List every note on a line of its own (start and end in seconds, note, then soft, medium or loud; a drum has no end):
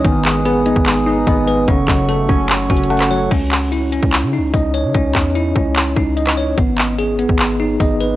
0.00 1.64 D#6 medium
0.05 0.73 G#1 loud
0.05 1.07 D#3 medium
0.05 0.65 B3 medium
0.05 1.66 B4 medium
0.05 1.66 G#5 medium
0.05 kick loud
0.05 closed hi-hat medium
0.25 1.27 G#3 medium
0.25 clap loud
0.25 closed hi-hat medium
0.45 1.26 B3 medium
0.45 1.68 G#4 medium
0.45 closed hi-hat medium
0.66 1.68 B3 medium
0.66 1.05 D#4 medium
0.66 closed hi-hat medium
0.76 1.25 G#1 loud
0.76 kick loud
0.86 clap loud
0.86 closed hi-hat medium
1.07 1.68 D#4 medium
1.27 1.66 G#1 loud
1.27 1.68 B3 medium
1.27 1.68 D#5 loud
1.27 kick loud
1.27 closed hi-hat medium
1.47 1.68 G#3 medium
1.47 1.68 B4 medium
1.47 closed hi-hat medium
1.68 1.87 F#1 loud
1.68 2.70 C#3 medium
1.68 2.28 C#4 medium
1.68 3.30 A4 medium
1.68 3.30 F#5 medium
1.68 3.30 C#6 medium
1.68 kick loud
1.68 closed hi-hat medium
1.88 2.27 F#1 loud
1.88 2.90 F#3 medium
1.88 kick loud
1.88 clap loud
2.09 2.89 A3 medium
2.09 3.31 A4 medium
2.09 closed hi-hat medium
2.29 2.68 F#1 loud
2.29 2.69 C#4 loud
2.29 3.30 C#4 medium
2.29 kick loud
2.49 clap loud
2.49 closed hi-hat medium
2.70 3.29 F#1 loud
2.70 3.31 C#4 medium
2.70 3.31 F#4 medium
2.70 kick loud
2.70 closed hi-hat soft
2.77 closed hi-hat medium
2.84 closed hi-hat medium
2.90 3.31 A3 medium
2.90 3.31 F#5 loud
2.90 closed hi-hat soft
2.97 cross-stick medium
2.97 clap medium
2.97 closed hi-hat medium
3.04 closed hi-hat medium
3.11 3.31 F#3 medium
3.11 3.31 C#5 medium
3.11 open hi-hat soft
3.31 4.00 C#2 loud
3.31 3.91 C#4 medium
3.31 kick loud
3.31 closed hi-hat medium
3.31 crash medium
3.52 clap loud
3.52 closed hi-hat medium
3.72 4.94 E4 medium
3.72 closed hi-hat medium
3.92 4.93 C#4 medium
3.92 closed hi-hat medium
4.03 4.25 C#2 loud
4.03 kick loud
4.13 clap loud
4.13 closed hi-hat medium
4.23 4.40 C#3 loud
4.33 5.56 D#4 medium
4.38 4.53 C#2 loud
4.54 4.86 C#2 loud
4.54 5.76 D#5 medium
4.54 kick loud
4.54 closed hi-hat medium
4.74 5.96 C#5 medium
4.74 closed hi-hat medium
4.84 4.94 C#3 loud
4.94 5.14 C#2 loud
4.94 5.54 C#4 medium
4.94 kick loud
4.94 closed hi-hat medium
5.15 5.54 E2 loud
5.15 kick loud
5.15 clap loud
5.35 6.58 E4 medium
5.35 closed hi-hat medium
5.56 5.95 C#2 loud
5.56 6.58 C#4 medium
5.56 kick loud
5.76 clap loud
5.76 closed hi-hat medium
5.96 6.55 C#2 loud
5.96 6.58 D#4 medium
5.96 kick medium
5.96 closed hi-hat medium
6.17 6.58 D#5 medium
6.17 closed hi-hat medium
6.27 cross-stick medium
6.27 clap medium
6.37 6.58 C#5 medium
6.37 closed hi-hat medium
6.58 7.26 G#1 loud
6.58 7.18 B3 medium
6.58 kick loud
6.58 closed hi-hat medium
6.78 clap loud
6.78 closed hi-hat medium
6.98 8.16 G#4 medium
6.98 closed hi-hat medium
7.19 8.16 B3 medium
7.19 closed hi-hat medium
7.29 7.78 G#1 loud
7.29 kick loud
7.39 clap loud
7.39 closed hi-hat medium
7.60 8.16 D#4 medium
7.80 8.16 G#1 loud
7.80 8.16 D#5 medium
7.80 kick loud
7.80 closed hi-hat medium
8.00 8.16 B4 medium
8.00 closed hi-hat medium